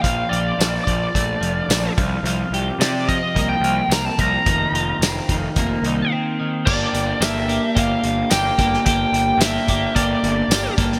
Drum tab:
CC |----------------|----------------|----------------|x---------------|
HH |x-x-x-x-x-x-x-x-|x-x-x-x-x-x-x-x-|x-x-x-x-x-x-----|--x-x-x-x-x-x-x-|
TB |----x-------x---|----x-------x---|----x-----------|----x-------x---|
SD |----o-------o---|----o-------o---|----o-----------|----o-------o-oo|
BD |o-----o-o-----o-|------o-o-----o-|o-----o-o-------|o-------o-----o-|

CC |----------------|
HH |x-x-x-x-x-x-x-x-|
TB |----x-------x---|
SD |----o-------o--o|
BD |o-----o-o-----o-|